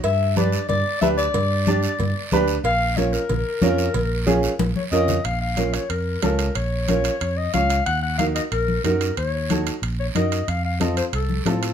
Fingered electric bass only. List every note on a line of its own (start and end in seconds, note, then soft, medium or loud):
0.04 0.56 G2 loud
0.69 0.82 G2 medium
1.01 1.28 D2 loud
1.34 1.86 G2 loud
1.99 2.12 G2 medium
2.32 2.58 D2 loud
2.64 3.16 A#1 loud
3.29 3.42 A#1 medium
3.62 3.88 F2 medium
3.94 4.46 A#1 loud
4.59 4.72 A#1 loud
4.92 5.18 F2 loud
5.25 5.77 A#1 loud
5.90 6.16 F2 medium
6.23 6.49 C#2 medium
6.55 7.08 A#1 loud
7.21 7.47 F2 medium
7.54 7.80 C#2 medium
7.87 8.39 D#2 loud
8.52 8.78 A#1 medium
8.84 9.10 F#2 medium
9.17 9.70 D#2 medium
9.82 10.09 A#1 loud
10.15 10.41 F#2 medium
10.48 11.00 F2 loud
11.13 11.39 C2 medium
11.46 11.72 A2 medium